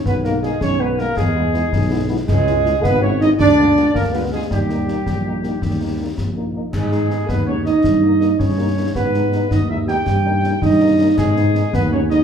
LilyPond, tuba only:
\new Staff \with { instrumentName = "Tuba" } { \clef bass \time 6/8 \key gis \minor \tempo 4. = 108 b,,4. b,,4. | e,4. b,,4. | cis,4. gis,,4. | d,4. d,4. |
dis,4. ais,,4. | dis,4. ais,,4. | gis,4. dis,4. | g,4. g,4. |
gis,4. dis,4. | g,4. g,4. | gis,4. dis,4. | }